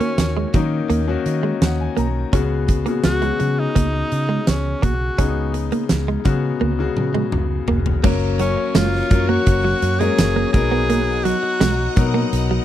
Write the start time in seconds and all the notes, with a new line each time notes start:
Already playing: D#3 A#3 C#4 F#4
0.00 A#3, closed hi-hat
0.18 D#2, muted clean electric guitar stroke, snare, closed hi-hat
0.37 G#3
0.54 D#3 F#3 A#3 C#4 D#4, kick, closed hi-hat
0.90 D#2 A#3, closed hi-hat
1.08 D#3 A#3 C#4 F#4, muted clean electric guitar stroke
1.26 D#3 D#5, closed hi-hat
1.43 G#3
1.62 D#2 F#5, snare, closed hi-hat
1.80 G#5
1.97 B1 A#3 A#5, closed hi-hat
2.33 C#2 C#3 G#3 B3 C#4 F#4, kick, closed hi-hat
2.68 muted clean electric guitar stroke, kick, closed hi-hat
2.86 C#3 G#3 A#3 B3 F#4, closed hi-hat
3.04 C#2 F#4, muted clean electric guitar stroke, snare, closed hi-hat
3.22 C#3 G#3 B3 F#4, closed hi-hat
3.40 C#3 F#3, closed hi-hat
3.59 D#4
3.75 C#2 A#3, kick, closed hi-hat
3.93 muted clean electric guitar stroke
4.12 C#3, closed hi-hat
4.29 G#3
4.47 C#2 C#4, snare, closed hi-hat
4.82 B1 A#3 F#4, kick, closed hi-hat
5.18 C#2 C#3 G#3 B3 C#4 D#4, kick, closed hi-hat
5.54 muted clean electric guitar stroke, closed hi-hat
5.72 A#3, closed hi-hat
5.89 C#2, muted clean electric guitar stroke, snare, closed hi-hat
6.08 G#3
6.25 C#3 F#3 G#3 B3 F#4, kick, closed hi-hat
6.61 C#2 A#3, high tom
6.79 C#3 G#3 B3 F#4, muted clean electric guitar stroke
6.97 C#3, mid tom
7.14 G#3, mid tom
7.32 C#2, mid tom
7.68 F1 A#3, floor tom
7.86 floor tom
8.03 F#1 F#3 A#3 C#4 A#4 C#5 A#5 C#6, kick, crash
8.39 F#3 C#4, closed hi-hat
8.57 muted clean electric guitar stroke
8.75 F#1 G#3 F4, snare, closed hi-hat, tambourine
9.11 F#2 F#3 A#3 C#4 A#4, muted clean electric guitar stroke, kick, closed hi-hat
9.28 A#3 F#4
9.47 F#1, kick, closed hi-hat
9.64 F#3
9.82 F#2, muted clean electric guitar stroke, closed hi-hat
9.99 F#3 G#3 A#3 C#4 G#4 A#4, closed hi-hat
10.18 F#1, snare, closed hi-hat, tambourine
10.36 A#3
10.53 B1 F#3 B3 D#4 G#4 A#4 D#5 F#5, muted clean electric guitar stroke, kick, closed hi-hat
10.72 B3
10.90 A#3, closed hi-hat
11.24 F#3 F#4, closed hi-hat
11.43 muted clean electric guitar stroke
11.61 B1 G#3, snare, closed hi-hat, tambourine
11.96 B2 F#3 B3 D#4 A#4, muted clean electric guitar stroke, kick, closed hi-hat
12.14 A#3
12.33 B1, closed hi-hat
12.51 F#3